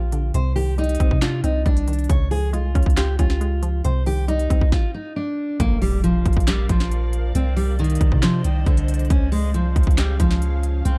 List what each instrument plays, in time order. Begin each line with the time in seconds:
Already playing: 808-style bass A#1, synth pluck F3 A#3 D4, steel-string acoustic guitar F4
0.12 synth pluck D3, closed hi-hat
0.34 808-style bass C2, synth pluck C3, steel-string acoustic guitar C5, closed hi-hat
0.56 synth pluck D#3, steel-string acoustic guitar G4, open hi-hat
0.78 synth pluck G3, steel-string acoustic guitar D#4, closed hi-hat
0.84 closed hi-hat
0.89 closed hi-hat
0.95 closed hi-hat
1.00 808-style bass C2, synth pluck C4, kick, closed hi-hat
1.11 808-style bass C3, kick
1.22 synth pluck D4, steel-string acoustic guitar F4, snare, clap, closed hi-hat
1.44 808-style bass C2, synth pluck C4, steel-string acoustic guitar D#4, closed hi-hat
1.66 808-style bass C2, synth pluck G3, steel-string acoustic guitar D4, kick, closed hi-hat
1.77 closed hi-hat
1.88 synth pluck D#3, closed hi-hat
1.93 closed hi-hat
1.99 closed hi-hat
2.04 closed hi-hat
2.09 808-style bass C#2, synth pluck C#3, steel-string acoustic guitar C#5, kick, closed hi-hat
2.31 synth pluck F3, steel-string acoustic guitar G#4, open hi-hat
2.53 808-style bass C2, synth pluck G#3, steel-string acoustic guitar F4, closed hi-hat
2.75 808-style bass C#2, synth pluck C#4, kick, closed hi-hat
2.83 808-style bass C#2, kick, closed hi-hat
2.90 closed hi-hat
2.97 synth pluck F4, steel-string acoustic guitar G4, snare, clap, closed hi-hat
3.19 808-style bass C#2, synth pluck C#4, steel-string acoustic guitar F4, kick, closed hi-hat
3.30 snare
3.41 synth pluck G#3, closed hi-hat
3.63 synth pluck F3, closed hi-hat
3.84 808-style bass C2, synth pluck C3, steel-string acoustic guitar C5, closed hi-hat
4.06 synth pluck D#3, steel-string acoustic guitar G4, open hi-hat
4.28 synth pluck G3, steel-string acoustic guitar D#4, closed hi-hat
4.39 closed hi-hat
4.50 808-style bass C2, synth pluck C4, kick, closed hi-hat
4.61 808-style bass C2, kick
4.72 steel-string acoustic guitar F4, kick, snare
4.94 steel-string acoustic guitar D#4
5.16 steel-string acoustic guitar D4
5.60 808-style bass A#1, steel-string acoustic guitar A#3, ambient pad A#4 D5 F5, kick, closed hi-hat, impact
5.82 steel-string acoustic guitar G3, open hi-hat
6.04 steel-string acoustic guitar F3, closed hi-hat
6.26 808-style bass A#1, kick, closed hi-hat
6.33 808-style bass A#1, kick, closed hi-hat
6.40 closed hi-hat
6.47 steel-string acoustic guitar G3, snare, clap, closed hi-hat
6.69 808-style bass A#1, steel-string acoustic guitar F3, kick, closed hi-hat
6.80 snare
6.92 closed hi-hat
7.13 closed hi-hat
7.35 808-style bass C2, steel-string acoustic guitar C4, ambient pad C5 D#5, closed hi-hat
7.56 steel-string acoustic guitar G3, open hi-hat
7.79 steel-string acoustic guitar D#3, closed hi-hat
7.84 closed hi-hat
7.90 closed hi-hat
7.95 closed hi-hat
8.01 808-style bass C2, kick, closed hi-hat
8.12 808-style bass C3, kick
8.23 steel-string acoustic guitar F3, snare, clap, closed hi-hat
8.44 808-style bass C2, steel-string acoustic guitar D#3, closed hi-hat
8.66 808-style bass C2, steel-string acoustic guitar D3, kick, closed hi-hat
8.77 closed hi-hat
8.88 closed hi-hat
8.94 closed hi-hat
8.99 closed hi-hat
9.05 closed hi-hat
9.10 808-style bass C#2, ambient pad C#4 G#4 F5, steel-string acoustic guitar C#4, kick, closed hi-hat
9.32 steel-string acoustic guitar G#3, open hi-hat
9.54 808-style bass C2, steel-string acoustic guitar F3, closed hi-hat
9.76 808-style bass C#2, kick, closed hi-hat
9.83 808-style bass C#2, kick, closed hi-hat
9.91 closed hi-hat
9.98 steel-string acoustic guitar G3, snare, clap, closed hi-hat
10.20 808-style bass C#2, steel-string acoustic guitar F3, kick, closed hi-hat
10.31 snare
10.42 closed hi-hat
10.63 closed hi-hat
10.85 808-style bass C2, steel-string acoustic guitar C4, ambient pad C5 D5 D#5, closed hi-hat